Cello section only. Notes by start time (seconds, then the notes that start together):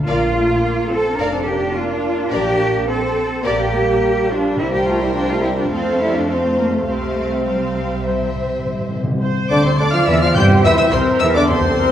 0.06 F4
0.90 A4
1.17 A#4
1.32 A4
1.45 G4
1.74 F4
2.31 G4
2.88 A4
3.45 G4
4.29 D4
4.58 E4
4.72 G4
4.86 F4
5.01 E4
5.14 D4
5.28 F4
5.42 E4
5.57 D4
5.71 C4
6.00 E4
6.15 D4
6.29 C4
6.58 A#3
6.73 A3
6.88 A3
7.46 G3
9.50 D3
9.65 C3
9.80 D3
9.94 F3
10.07 E3
10.22 F3
10.37 G3
10.65 E3
10.80 E3
10.93 C3
11.22 E3
11.36 D3
11.50 C3